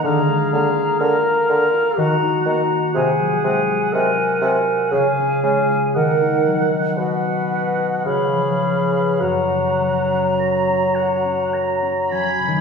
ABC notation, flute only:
X:1
M:3/4
L:1/8
Q:1/4=58
K:F#
V:1 name="Flute"
a a a a a a | g g g g g g | f2 f2 b2 | a4- a z |]